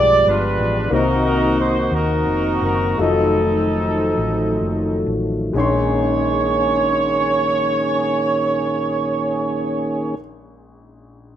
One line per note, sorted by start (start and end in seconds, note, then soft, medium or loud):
0.00 0.23 B1 medium
0.00 0.93 G2 medium
0.00 0.89 F3 medium
0.00 0.87 G#3 medium
0.00 0.89 G#3 soft
0.00 0.89 B3 soft
0.00 0.87 F4 medium
0.00 0.88 G4 medium
0.00 0.89 B4 medium
0.00 0.25 D5 medium
0.27 0.56 G1 medium
0.27 0.89 D4 medium
0.27 0.89 F4 medium
0.27 0.93 B4 medium
0.59 0.89 A1 medium
0.90 1.88 C2 medium
0.90 1.88 C3 medium
0.90 2.97 D#3 medium
0.90 2.94 A#3 medium
0.90 2.97 A#3 soft
0.90 2.97 C4 medium
0.90 2.94 D#4 medium
0.90 1.89 D#4 medium
0.90 2.95 F#4 medium
0.90 2.97 F#4 medium
0.90 1.89 F#4 medium
0.90 1.24 A#4 medium
0.90 2.95 C5 medium
1.25 1.56 A#4 medium
1.60 1.93 C5 medium
1.92 2.23 D#2 medium
1.92 2.96 D#4 medium
1.92 2.96 F#4 medium
1.92 2.63 A#4 medium
2.27 2.59 F1 medium
2.62 2.95 F#1 medium
2.62 2.97 A#4 medium
2.98 4.13 F1 medium
2.98 5.54 D#3 medium
2.98 5.54 F3 medium
2.98 5.53 F#3 soft
2.98 5.51 A3 medium
2.98 5.54 A3 soft
2.98 5.04 C4 soft
2.98 5.04 D#4 medium
2.98 5.51 F4 soft
2.98 5.52 F#4 medium
2.98 5.07 A4 medium
2.98 5.53 D#5 medium
4.18 4.57 A1 medium
4.61 5.03 F#1 medium
5.07 5.51 A1 medium
5.53 10.13 A#1 medium
5.53 10.16 A#1 medium
5.53 10.15 D#3 medium
5.53 10.12 G#3 medium
5.53 10.15 A#3 soft
5.53 10.14 C#4 medium
5.53 10.15 C#4 soft
5.53 10.15 G#4 medium
5.53 10.16 C#5 medium
5.57 10.16 D#4 medium
5.57 10.19 C6 medium